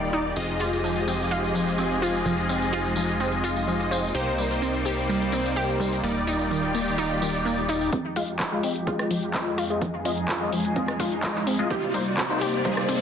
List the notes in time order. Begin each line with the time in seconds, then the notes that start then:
Already playing: D#1 D#3 G3 A#3 D#4 F4 G4 D5
0.13 D#4
0.36 F1 F3 G#3 C4 D#4 F4 G#4 D#5, tambourine
0.49 tambourine
0.60 F4, tambourine
0.73 tambourine
0.84 F3, tambourine
0.96 tambourine
1.08 C4, tambourine
1.20 tambourine
1.31 F4, tambourine
1.44 tambourine
1.55 F3, tambourine
1.67 tambourine
1.78 C4, tambourine
1.91 tambourine
2.02 F4, tambourine
2.14 tambourine
2.26 F1 F3, tambourine
2.38 tambourine
2.49 C4, tambourine
2.62 tambourine
2.73 F4, tambourine
2.85 tambourine
2.96 F3, tambourine
3.09 tambourine
3.20 C4, tambourine
3.32 tambourine
3.44 F4, tambourine
3.56 tambourine
3.67 F3, tambourine
3.80 tambourine
3.91 C4, tambourine
4.03 tambourine
4.15 C2 C3 G3 A#3 D#4 G4 C5 D5
4.27 tambourine
4.38 G3, tambourine
4.51 tambourine
4.62 C4, tambourine
4.74 tambourine
4.85 G4, tambourine
4.98 tambourine
5.09 G3, tambourine
5.21 tambourine
5.32 C4, tambourine
5.45 tambourine
5.56 G4, tambourine
5.69 tambourine
5.80 G3, tambourine
5.92 tambourine
6.04 D#1 D#3 G3 A#3 D#4 F4 G4 D5, tambourine
6.15 tambourine
6.27 D#4, tambourine
6.39 tambourine
6.51 D#3, tambourine
6.63 tambourine
6.74 A#3, tambourine
6.88 tambourine
6.98 D#4, tambourine
7.11 tambourine
7.22 D#3, tambourine
7.34 tambourine
7.45 A#3, tambourine
7.58 tambourine
7.69 D#4, tambourine
7.81 tambourine
7.92 F2 F3 G#3 C4 D#4 G4, kick, closed hi-hat, riser
8.16 G#3 F4 D#5, open hi-hat
8.28 closed hi-hat
8.39 F3, kick, clap, closed hi-hat
8.52 G#3 F4 D#5
8.63 C4, open hi-hat
8.76 closed hi-hat
8.87 G#3 F4 D#5, kick, closed hi-hat
8.99 cross-stick, closed hi-hat
9.11 F3, open hi-hat
9.23 closed hi-hat
9.34 G#3 C4 F4 D#5, kick, clap, closed hi-hat
9.58 F4, open hi-hat
9.70 G#3 F4 D#5, closed hi-hat
9.82 F3 G#4, kick, closed hi-hat
10.05 G#3 C4 F4 D#5, open hi-hat
10.17 closed hi-hat
10.28 F4, kick, clap, closed hi-hat
10.41 G#3 F4 D#5
10.52 F3, open hi-hat
10.65 closed hi-hat
10.76 G#3 C4 F4 D#5, kick, closed hi-hat
10.88 cross-stick, closed hi-hat
11.00 F4, kick, open hi-hat
11.12 closed hi-hat
11.23 F3 G#3 F4 D#5, kick, clap, closed hi-hat
11.35 clap
11.47 C4, open hi-hat
11.59 G#3 F4 D#5, closed hi-hat
11.70 C2 C3 A#3 G4 D5, kick, closed hi-hat
11.94 G3 A#3 D#4 C5, open hi-hat
12.06 closed hi-hat
12.17 C4, kick, clap, closed hi-hat
12.30 A#3 D#4 C5
12.41 G4, open hi-hat
12.54 closed hi-hat
12.65 G3 A#3 D#4 C5, kick, closed hi-hat
12.77 cross-stick, closed hi-hat
12.89 C4, open hi-hat